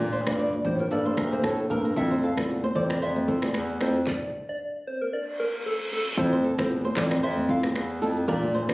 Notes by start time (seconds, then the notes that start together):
Already playing: A#2
0.00 high conga, shaker
0.12 C5, shaker
0.26 G2 A#3 D4 F4 G4 D5, finger snap, kick, cross-stick, high conga, shaker
0.39 D5, shaker
0.53 high conga, shaker
0.65 A2 A#3 D4 F4 G4 C5, kick, low conga
0.78 A#4, shaker
0.91 G2 A#3 D4 G4 A4 D5, shaker
1.05 C5, high conga, shaker
1.17 D2 A#4, finger snap, kick, cross-stick
1.32 A#3 D4 G4 A4 C5, high conga, shaker
1.44 A2 A4, finger snap, kick, cross-stick, high conga, shaker
1.58 shaker
1.70 G2 A#3 D4 G4 A4 A#4, kick, high conga, shaker
1.85 A#4, shaker
1.96 F2 C4 E4 F4 A4 E5, kick, low conga, shaker
2.10 C5, high conga, shaker
2.23 A4 F5, shaker
2.37 E2 C4 E4 F4 A4 D5, finger snap, kick, cross-stick, high conga, shaker
2.49 shaker
2.63 C5, high conga, shaker
2.75 F2 C4 E4 F4 A4 C5 D5, kick, low conga
2.89 D5, finger snap, cross-stick, shaker
3.02 F2 C5 E5, shaker
3.16 high conga, shaker
3.28 C4 E4 F4 A4 C5, kick
3.42 E2 D5, finger snap, cross-stick, high conga, shaker
3.54 E2, finger snap, cross-stick, high conga, shaker
3.69 shaker
3.81 F2 C4 E4 F4 A4 C5, finger snap, cross-stick, high conga, shaker
3.95 shaker
4.07 D5, kick, snare
4.49 D5
4.87 C5
5.02 A#4
5.12 D5, reverse cymbal
5.40 A#4
5.66 A4
5.92 A4
6.17 F2 C4 E4 F4 A4 C5, kick, impact, low conga, shaker
6.32 C5, high conga, shaker
6.44 A4, shaker
6.58 E2 C4 E4 F4 A4 C5, finger snap, kick, cross-stick, high conga, shaker
6.71 shaker
6.85 C5, high conga, shaker
6.96 F2 C4 E4 F4 A4 D5, kick, clap, open hi-hat, low conga
7.10 finger snap, cross-stick, shaker
7.23 F2 C5 E5, shaker
7.37 high conga, shaker
7.49 C4 E4 F4 A4 C5 F5, kick
7.63 E2, finger snap, cross-stick, high conga, shaker
7.76 E2, finger snap, cross-stick, shaker
7.90 shaker
8.01 F2 C4 E4 F4 A4, open hi-hat, high conga, shaker
8.17 shaker
8.28 A#2 A#3 D4 F4 G4 A#4 D5, kick, low conga, shaker
8.42 high conga, shaker
8.54 C5, shaker
8.68 G2 A#3 D4 F4 G4 D5, finger snap, kick, cross-stick, high conga, shaker